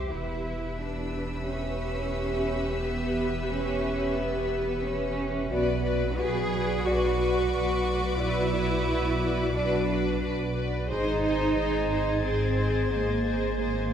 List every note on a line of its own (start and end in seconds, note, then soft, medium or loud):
0.00 0.14 C2 medium
0.09 5.53 E1 medium
0.09 5.45 E2 soft
0.09 0.77 E4 medium
0.09 5.45 G4 medium
0.09 5.33 G4 soft
0.09 5.46 B4 medium
0.09 5.33 E5 soft
0.09 5.46 E5 medium
0.09 5.12 B5 soft
0.77 1.45 D4 medium
0.77 5.12 E6 soft
1.45 2.77 C#4 medium
2.80 3.46 B3 medium
3.48 4.15 C#4 medium
4.15 4.82 B3 medium
4.82 5.50 C#4 medium
5.49 6.09 B1 medium
5.49 10.93 B1 medium
5.49 6.17 B3 medium
5.49 5.73 F#4 medium
5.49 5.83 F#4 medium
5.49 5.83 B4 medium
5.49 5.73 D5 medium
5.49 5.82 D5 medium
5.49 10.51 B5 soft
5.83 6.16 F#4 soft
5.83 6.16 B4 medium
5.83 6.16 D5 soft
6.17 6.77 B1 medium
6.17 6.50 F#4 medium
6.17 6.84 G#4 medium
6.17 6.50 B4 medium
6.17 6.49 D5 medium
6.17 9.43 C#6 soft
6.50 6.84 F#4 soft
6.50 6.83 B4 soft
6.50 6.84 D5 medium
6.84 7.44 B1 medium
6.84 8.19 F#4 medium
6.84 7.17 F#4 medium
6.84 7.09 F#4 medium
6.84 7.17 B4 medium
6.84 7.18 D5 medium
6.84 7.09 D5 medium
6.84 9.43 D6 medium
7.19 7.51 F#4 medium
7.19 7.51 B4 medium
7.19 7.50 D5 medium
7.51 8.11 B1 medium
7.51 7.85 F#4 medium
7.51 7.85 B4 medium
7.51 7.83 D5 medium
7.85 8.19 F#4 medium
7.85 8.18 B4 medium
7.85 8.17 D5 medium
8.19 8.79 B1 medium
8.19 9.54 E4 medium
8.19 8.43 F#4 medium
8.19 8.52 F#4 medium
8.19 8.52 B4 medium
8.19 8.51 D5 medium
8.19 8.43 D5 medium
8.53 8.86 F#4 soft
8.53 8.87 B4 medium
8.53 8.86 D5 medium
8.87 9.46 B1 medium
8.87 9.19 F#4 medium
8.87 9.20 B4 medium
8.87 9.20 D5 soft
9.20 9.53 F#4 medium
9.20 9.53 B4 medium
9.20 9.54 D5 medium
9.43 10.51 D6 soft
9.54 10.14 B1 medium
9.54 10.20 D4 medium
9.54 9.78 F#4 medium
9.54 9.87 F#4 medium
9.54 9.86 B4 medium
9.54 9.78 D5 medium
9.54 9.86 D5 medium
9.87 10.21 F#4 medium
9.87 10.21 B4 medium
9.87 10.20 D5 medium
10.22 10.81 B1 medium
10.22 10.54 F#4 soft
10.22 10.53 B4 medium
10.22 10.55 D5 medium
10.54 10.88 F#4 medium
10.54 10.88 B4 soft
10.54 10.89 D5 medium
10.89 11.49 G#1 medium
10.89 13.93 G#1 medium
10.89 12.20 D#4 medium
10.89 11.22 G#4 medium
10.89 12.20 G#4 medium
10.89 11.22 C5 medium
10.89 12.20 C5 medium
10.89 11.23 D#5 medium
10.89 13.93 G#6 soft
10.89 13.93 A6 soft
11.23 11.55 G#4 soft
11.23 11.54 C5 medium
11.23 11.56 D#5 soft
11.55 12.16 G#1 medium
11.55 11.89 G#4 soft
11.55 11.88 C5 soft
11.55 11.89 D#5 soft
11.89 12.23 G#4 soft
11.89 12.22 C5 soft
11.89 12.23 D#5 soft
12.23 12.83 G#1 medium
12.23 12.91 C4 medium
12.23 13.93 G#4 medium
12.23 12.56 G#4 medium
12.23 12.55 C5 soft
12.23 13.93 C5 medium
12.23 12.57 D#5 soft
12.56 12.90 G#4 soft
12.56 12.89 C5 soft
12.56 12.90 D#5 soft
12.90 13.51 G#1 soft
12.90 13.57 A#3 medium
12.90 13.23 G#4 soft
12.90 13.24 C5 soft
12.90 13.24 D#5 soft
13.24 13.57 G#4 soft
13.24 13.58 C5 soft
13.24 13.56 D#5 soft
13.58 13.93 G#1 soft
13.58 13.93 A#3 medium
13.58 13.91 G#4 soft
13.58 13.90 C5 soft
13.58 13.90 D#5 soft